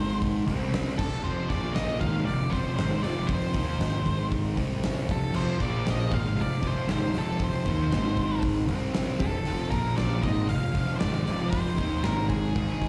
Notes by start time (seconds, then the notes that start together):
Already playing: G#1 G#2 D#3 G#3 C5
0.22 kick, open hi-hat
0.47 C2 C3 G3 C4, kick, snare, open hi-hat
0.74 snare, open hi-hat
0.98 F1 F2 C3 A4, kick, crash
1.22 F1 F2 C3 F3 C5
1.49 A#1 A#2 F3 A#3 D5, kick, snare, open hi-hat
1.75 D#5, snare, open hi-hat
1.99 G#1 G#2 D#3 G#3 F5, kick, open hi-hat
2.24 F1 F2 C3 D5, open hi-hat
2.49 F1 F2 C3 F3 C5, kick
2.53 F2, snare, open hi-hat
2.75 G#1 G#2 D#3 G#3 C5, snare, open hi-hat
3.01 F1 F2 C3 F3 D5, open hi-hat
3.27 C5, kick, open hi-hat
3.53 D#2 D#3 A#3 D#4, kick, snare, open hi-hat
3.78 G#1 G#2 D#3 G#3, snare, open hi-hat
4.06 kick, open hi-hat
4.32 kick, open hi-hat
4.56 C2 C3 G3 C4, kick, open hi-hat
4.83 snare, open hi-hat
5.08 F1 F2 C3 A4, kick, open hi-hat
5.32 F1 F2 C3 F3 C5, crash
5.60 A#1 A#2 F3 A#3 D5, kick, snare, open hi-hat
5.86 snare, open hi-hat
5.90 D#5
6.10 G#1 G#2 D#3 G#3 F5, kick, open hi-hat
6.35 F1 F2 C3, open hi-hat
6.42 D5
6.61 F1 F2 C3 F3, kick, snare, open hi-hat
6.67 C5
6.88 G#1 G#2 D#3 G#3, snare, open hi-hat
6.92 C5
7.13 F1 F2 C3 F3, open hi-hat
7.18 A4
7.39 kick, open hi-hat
7.44 C5
7.65 D#2 D#3 A#3 D#4, kick, snare, open hi-hat
7.90 G#1 G#2 D#3 G#3, snare, open hi-hat
8.16 kick, open hi-hat
8.42 kick, open hi-hat
8.67 C2 C3 G3 C4, kick, open hi-hat
8.94 snare, open hi-hat
9.19 F1 F2 C3 A4, kick, open hi-hat
9.45 F1 F2 C3 F3, open hi-hat
9.70 A#1 A#2 F3 A#3 A#4, kick, snare, open hi-hat
9.96 D5, snare, open hi-hat
10.21 G#1 G#2 D#3 G#3 D#5, kick, open hi-hat
10.48 F1 F2 C3 F5, open hi-hat
10.73 F1 F2 C3 F3, kick, snare, open hi-hat
10.96 G#2 C5 D5
11.00 G#1 D#3 G#3, snare, open hi-hat
11.26 F1 F2 C3 F3, open hi-hat
11.50 C5, kick, open hi-hat
11.76 D#2 D#3 A#3 D#4, kick, snare, open hi-hat
12.02 G#1 G#2 D#3 G#3 A#4, snare, open hi-hat
12.29 G#4, kick, open hi-hat
12.55 G#1 G#2 D#3 G#3, kick, open hi-hat
12.82 kick, snare, open hi-hat